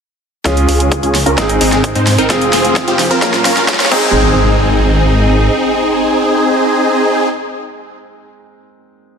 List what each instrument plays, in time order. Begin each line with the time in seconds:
0.44 detuned saw bass C#2, grand piano G#3 C#4 F4 G#4, supersaw synth C#4 F4 G#4, kick, snare, closed hi-hat, riser
0.57 closed hi-hat
0.68 detuned saw bass C#2, supersaw synth C#4 F4 G#4, open hi-hat
0.80 closed hi-hat
0.92 kick, closed hi-hat
1.03 detuned saw bass C#2, supersaw synth C#4 F4 G#4, closed hi-hat
1.15 snare, open hi-hat
1.26 detuned saw bass C#2, supersaw synth C#4 F4 A#4, closed hi-hat
1.37 detuned saw bass G#1, grand piano G#3 C4 D#4 G#4, supersaw synth C4 D#4 G#4, kick, snare, closed hi-hat
1.49 closed hi-hat
1.61 detuned saw bass G#1, supersaw synth C4 D#4 G#4, open hi-hat
1.72 snare, closed hi-hat
1.84 kick, closed hi-hat
1.95 detuned saw bass G#2, supersaw synth C4 D#4 C5, closed hi-hat
2.07 snare, open hi-hat
2.18 detuned saw bass G#1, supersaw synth C4 D#4 A#4, closed hi-hat
2.29 detuned saw bass F1, grand piano G#3 C4 F4 G#4, supersaw synth C4 F4 G#4, kick, snare, closed hi-hat
2.41 closed hi-hat
2.53 detuned saw bass F1, supersaw synth C4 F4 G#4, snare, open hi-hat
2.65 closed hi-hat
2.76 kick, snare, closed hi-hat
2.88 detuned saw bass F1, supersaw synth C4 F4 G4, closed hi-hat
2.99 snare, open hi-hat
3.11 detuned saw bass F2, supersaw synth C4 F4 A#4, closed hi-hat
3.21 detuned saw bass A#1, grand piano A#3 C#4 F4 A#4, supersaw synth C#4 F4 A#4, kick, snare, closed hi-hat
3.34 snare, closed hi-hat
3.45 detuned saw bass A#1, supersaw synth C#4 F4 A#4, snare, open hi-hat
3.57 snare, closed hi-hat
3.68 kick, snare, closed hi-hat
3.74 snare
3.80 detuned saw bass A#1, supersaw synth C#4 F4 C#5, snare, closed hi-hat
3.86 grand piano G#3, snare
3.91 detuned saw bass G#1, grand piano C4 D#4 G#4, supersaw synth C4 D#4 G#4, kick, crash, impact